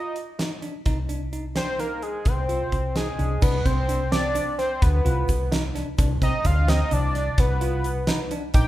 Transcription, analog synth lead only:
0, 0, Header, 1, 2, 480
1, 0, Start_track
1, 0, Key_signature, -3, "minor"
1, 0, Tempo, 465839
1, 886, Time_signature, 11, 3, 24, 8
1, 8940, End_track
2, 0, Start_track
2, 0, Title_t, "Analog synth lead"
2, 0, Program_c, 0, 81
2, 0, Note_on_c, 0, 75, 100
2, 0, Note_on_c, 0, 82, 100
2, 162, Note_off_c, 0, 75, 0
2, 162, Note_off_c, 0, 82, 0
2, 1611, Note_on_c, 0, 72, 103
2, 1611, Note_on_c, 0, 79, 103
2, 1851, Note_on_c, 0, 70, 91
2, 1851, Note_on_c, 0, 77, 91
2, 1867, Note_off_c, 0, 72, 0
2, 1867, Note_off_c, 0, 79, 0
2, 2087, Note_on_c, 0, 68, 80
2, 2087, Note_on_c, 0, 75, 80
2, 2103, Note_off_c, 0, 70, 0
2, 2103, Note_off_c, 0, 77, 0
2, 2338, Note_on_c, 0, 72, 94
2, 2338, Note_on_c, 0, 79, 94
2, 2354, Note_off_c, 0, 68, 0
2, 2354, Note_off_c, 0, 75, 0
2, 3050, Note_off_c, 0, 72, 0
2, 3050, Note_off_c, 0, 79, 0
2, 3056, Note_on_c, 0, 68, 85
2, 3056, Note_on_c, 0, 75, 85
2, 3527, Note_on_c, 0, 71, 89
2, 3527, Note_on_c, 0, 78, 89
2, 3542, Note_off_c, 0, 68, 0
2, 3542, Note_off_c, 0, 75, 0
2, 3764, Note_on_c, 0, 72, 102
2, 3764, Note_on_c, 0, 79, 102
2, 3779, Note_off_c, 0, 71, 0
2, 3779, Note_off_c, 0, 78, 0
2, 4238, Note_off_c, 0, 72, 0
2, 4238, Note_off_c, 0, 79, 0
2, 4244, Note_on_c, 0, 74, 105
2, 4244, Note_on_c, 0, 81, 105
2, 4692, Note_off_c, 0, 74, 0
2, 4692, Note_off_c, 0, 81, 0
2, 4724, Note_on_c, 0, 72, 91
2, 4724, Note_on_c, 0, 79, 91
2, 4963, Note_on_c, 0, 71, 87
2, 4963, Note_on_c, 0, 78, 87
2, 4979, Note_off_c, 0, 72, 0
2, 4979, Note_off_c, 0, 79, 0
2, 5684, Note_off_c, 0, 71, 0
2, 5684, Note_off_c, 0, 78, 0
2, 6419, Note_on_c, 0, 75, 99
2, 6419, Note_on_c, 0, 82, 99
2, 6657, Note_on_c, 0, 77, 92
2, 6657, Note_on_c, 0, 84, 92
2, 6673, Note_off_c, 0, 75, 0
2, 6673, Note_off_c, 0, 82, 0
2, 6893, Note_on_c, 0, 75, 100
2, 6893, Note_on_c, 0, 82, 100
2, 6908, Note_off_c, 0, 77, 0
2, 6908, Note_off_c, 0, 84, 0
2, 7140, Note_on_c, 0, 74, 93
2, 7140, Note_on_c, 0, 81, 93
2, 7155, Note_off_c, 0, 75, 0
2, 7155, Note_off_c, 0, 82, 0
2, 7617, Note_on_c, 0, 71, 84
2, 7617, Note_on_c, 0, 78, 84
2, 7632, Note_off_c, 0, 74, 0
2, 7632, Note_off_c, 0, 81, 0
2, 8570, Note_off_c, 0, 71, 0
2, 8570, Note_off_c, 0, 78, 0
2, 8801, Note_on_c, 0, 79, 93
2, 8801, Note_on_c, 0, 86, 93
2, 8940, Note_off_c, 0, 79, 0
2, 8940, Note_off_c, 0, 86, 0
2, 8940, End_track
0, 0, End_of_file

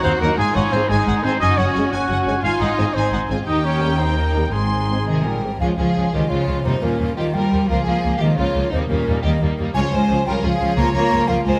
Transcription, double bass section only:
0, 0, Header, 1, 2, 480
1, 0, Start_track
1, 0, Tempo, 342857
1, 542, Time_signature, 6, 3, 24, 8
1, 4859, Tempo, 355661
1, 8219, Tempo, 344234
1, 16075, End_track
2, 0, Start_track
2, 0, Title_t, "Double bass section"
2, 0, Program_c, 0, 48
2, 64, Note_on_c, 0, 39, 54
2, 160, Note_off_c, 0, 39, 0
2, 310, Note_on_c, 0, 39, 48
2, 404, Note_off_c, 0, 39, 0
2, 548, Note_on_c, 0, 32, 64
2, 642, Note_off_c, 0, 32, 0
2, 794, Note_on_c, 0, 32, 53
2, 886, Note_off_c, 0, 32, 0
2, 1031, Note_on_c, 0, 32, 45
2, 1123, Note_off_c, 0, 32, 0
2, 1269, Note_on_c, 0, 32, 63
2, 1362, Note_off_c, 0, 32, 0
2, 1512, Note_on_c, 0, 32, 47
2, 1604, Note_off_c, 0, 32, 0
2, 1733, Note_on_c, 0, 32, 42
2, 1828, Note_off_c, 0, 32, 0
2, 1982, Note_on_c, 0, 30, 67
2, 2076, Note_off_c, 0, 30, 0
2, 2220, Note_on_c, 0, 30, 50
2, 2313, Note_off_c, 0, 30, 0
2, 2452, Note_on_c, 0, 30, 42
2, 2547, Note_off_c, 0, 30, 0
2, 2694, Note_on_c, 0, 30, 64
2, 2789, Note_off_c, 0, 30, 0
2, 2944, Note_on_c, 0, 30, 43
2, 3037, Note_off_c, 0, 30, 0
2, 3166, Note_on_c, 0, 30, 41
2, 3263, Note_off_c, 0, 30, 0
2, 3406, Note_on_c, 0, 32, 60
2, 3503, Note_off_c, 0, 32, 0
2, 3655, Note_on_c, 0, 32, 47
2, 3751, Note_off_c, 0, 32, 0
2, 3892, Note_on_c, 0, 32, 34
2, 3989, Note_off_c, 0, 32, 0
2, 4128, Note_on_c, 0, 32, 54
2, 4226, Note_off_c, 0, 32, 0
2, 4381, Note_on_c, 0, 32, 45
2, 4476, Note_off_c, 0, 32, 0
2, 4619, Note_on_c, 0, 32, 39
2, 4716, Note_off_c, 0, 32, 0
2, 4857, Note_on_c, 0, 39, 45
2, 6233, Note_off_c, 0, 39, 0
2, 6295, Note_on_c, 0, 32, 39
2, 7509, Note_off_c, 0, 32, 0
2, 7739, Note_on_c, 0, 37, 47
2, 7834, Note_off_c, 0, 37, 0
2, 7978, Note_on_c, 0, 37, 41
2, 8073, Note_off_c, 0, 37, 0
2, 8216, Note_on_c, 0, 37, 40
2, 8313, Note_off_c, 0, 37, 0
2, 8461, Note_on_c, 0, 37, 39
2, 8557, Note_off_c, 0, 37, 0
2, 8713, Note_on_c, 0, 37, 43
2, 8807, Note_off_c, 0, 37, 0
2, 8940, Note_on_c, 0, 37, 40
2, 9036, Note_off_c, 0, 37, 0
2, 9191, Note_on_c, 0, 39, 49
2, 9285, Note_off_c, 0, 39, 0
2, 9425, Note_on_c, 0, 39, 40
2, 9521, Note_off_c, 0, 39, 0
2, 9668, Note_on_c, 0, 39, 39
2, 9764, Note_off_c, 0, 39, 0
2, 9910, Note_on_c, 0, 39, 46
2, 10005, Note_off_c, 0, 39, 0
2, 10152, Note_on_c, 0, 39, 44
2, 10248, Note_off_c, 0, 39, 0
2, 10404, Note_on_c, 0, 39, 42
2, 10497, Note_off_c, 0, 39, 0
2, 10647, Note_on_c, 0, 37, 49
2, 10739, Note_off_c, 0, 37, 0
2, 10880, Note_on_c, 0, 37, 41
2, 10974, Note_off_c, 0, 37, 0
2, 11130, Note_on_c, 0, 37, 39
2, 11222, Note_off_c, 0, 37, 0
2, 11363, Note_on_c, 0, 37, 52
2, 11456, Note_off_c, 0, 37, 0
2, 11610, Note_on_c, 0, 37, 48
2, 11701, Note_off_c, 0, 37, 0
2, 11833, Note_on_c, 0, 37, 44
2, 11928, Note_off_c, 0, 37, 0
2, 12078, Note_on_c, 0, 39, 48
2, 12171, Note_off_c, 0, 39, 0
2, 12321, Note_on_c, 0, 39, 52
2, 12413, Note_off_c, 0, 39, 0
2, 12565, Note_on_c, 0, 39, 43
2, 12656, Note_off_c, 0, 39, 0
2, 12793, Note_on_c, 0, 39, 55
2, 12886, Note_off_c, 0, 39, 0
2, 13032, Note_on_c, 0, 39, 54
2, 13125, Note_off_c, 0, 39, 0
2, 13278, Note_on_c, 0, 39, 50
2, 13369, Note_off_c, 0, 39, 0
2, 13518, Note_on_c, 0, 37, 59
2, 13609, Note_off_c, 0, 37, 0
2, 13751, Note_on_c, 0, 37, 58
2, 13843, Note_off_c, 0, 37, 0
2, 13992, Note_on_c, 0, 37, 47
2, 14084, Note_off_c, 0, 37, 0
2, 14224, Note_on_c, 0, 37, 62
2, 14317, Note_off_c, 0, 37, 0
2, 14466, Note_on_c, 0, 37, 53
2, 14558, Note_off_c, 0, 37, 0
2, 14697, Note_on_c, 0, 37, 54
2, 14791, Note_off_c, 0, 37, 0
2, 14933, Note_on_c, 0, 37, 64
2, 15028, Note_off_c, 0, 37, 0
2, 15175, Note_on_c, 0, 37, 58
2, 15270, Note_off_c, 0, 37, 0
2, 15409, Note_on_c, 0, 37, 54
2, 15506, Note_off_c, 0, 37, 0
2, 15662, Note_on_c, 0, 37, 64
2, 15757, Note_off_c, 0, 37, 0
2, 15898, Note_on_c, 0, 37, 54
2, 15994, Note_off_c, 0, 37, 0
2, 16075, End_track
0, 0, End_of_file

